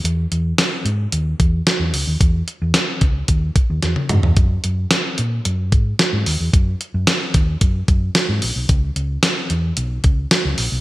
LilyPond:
<<
  \new Staff \with { instrumentName = "Fingered electric bass" } { \clef bass \time 4/4 \key e \lydian \tempo 4 = 111 e,8 e,8 r8 gis,8 dis,8 e,8 r16 e,16 cis,16 dis,16 | e,8 r16 e,16 r8 cis,8 dis,8 r16 dis,16 e,16 r16 gis,16 e,16 | fis,8 fis,8 r8 ais,8 fis,8 gis,8 r16 gis,16 dis,16 e,16 | fis,8 r16 fis,16 r8 dis,8 fis,8 fis,8 r16 gis,16 ais,,16 b,,16 |
cis,8 cis,8 r8 e,8 b,,8 cis,8 r16 cis,16 ais,,16 b,,16 | }
  \new DrumStaff \with { instrumentName = "Drums" } \drummode { \time 4/4 hh8 hh8 <hh sn>8 hh8 hh8 <hh bd>8 <hh sn>8 hho8 | <hh bd>8 hh8 <hh sn>8 <hh bd>8 <hh bd>8 <hh bd>8 <hh sn>16 tommh16 <hh toml>16 tomfh16 | <hh bd>8 hh8 <hh sn>8 hh8 hh8 <hh bd>8 <hh sn>8 hho8 | <hh bd>8 hh8 <hh sn>8 <hh bd>8 <hh bd>8 <hh bd>8 <hh sn>8 hho8 |
<hh bd>8 hh8 <hh sn>8 hh8 hh8 <hh bd>8 <hh sn>8 hho8 | }
>>